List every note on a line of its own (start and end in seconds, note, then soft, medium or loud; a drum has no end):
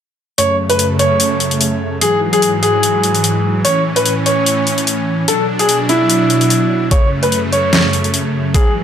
0.38 2.00 F#2 medium
0.38 2.00 C#3 medium
0.38 2.00 A3 medium
0.38 0.54 C#5 medium
0.38 closed hi-hat medium
0.69 0.85 B4 medium
0.69 closed hi-hat soft
0.79 closed hi-hat medium
0.99 1.94 C#5 medium
0.99 closed hi-hat medium
1.20 closed hi-hat medium
1.40 closed hi-hat soft
1.51 closed hi-hat soft
1.61 closed hi-hat medium
2.01 3.63 G#2 medium
2.01 5.25 E3 medium
2.01 3.63 F#3 medium
2.01 2.18 G#4 medium
2.01 closed hi-hat medium
2.33 2.48 G#4 medium
2.33 closed hi-hat medium
2.42 closed hi-hat medium
2.62 3.57 G#4 medium
2.62 closed hi-hat medium
2.83 closed hi-hat medium
3.03 closed hi-hat medium
3.15 closed hi-hat soft
3.24 closed hi-hat medium
3.65 5.26 A2 medium
3.65 5.26 C#4 medium
3.65 3.81 C#5 loud
3.65 closed hi-hat medium
3.96 4.12 B4 medium
3.96 closed hi-hat medium
4.05 closed hi-hat medium
4.26 5.20 C#5 medium
4.26 closed hi-hat medium
4.46 closed hi-hat medium
4.67 closed hi-hat soft
4.78 closed hi-hat soft
4.87 closed hi-hat medium
5.28 6.90 B2 medium
5.28 6.90 F#3 medium
5.28 6.90 D4 medium
5.28 5.44 A4 medium
5.28 closed hi-hat medium
5.59 5.75 G#4 medium
5.59 closed hi-hat soft
5.69 closed hi-hat medium
5.89 6.84 E4 medium
5.89 closed hi-hat soft
6.10 closed hi-hat medium
6.30 closed hi-hat soft
6.41 closed hi-hat soft
6.50 closed hi-hat medium
6.91 8.53 F#2 medium
6.91 8.53 C#3 medium
6.91 8.53 A3 medium
6.91 7.07 C#5 medium
6.91 kick loud
6.91 closed hi-hat medium
7.23 7.38 B4 medium
7.23 closed hi-hat soft
7.32 closed hi-hat medium
7.52 8.47 C#5 medium
7.52 closed hi-hat soft
7.73 snare loud
7.73 closed hi-hat medium
7.93 closed hi-hat soft
8.04 closed hi-hat soft
8.14 closed hi-hat medium
8.54 8.84 G#2 medium
8.54 8.84 E3 medium
8.54 8.84 F#3 medium
8.54 8.71 G#4 medium
8.54 kick loud
8.54 closed hi-hat medium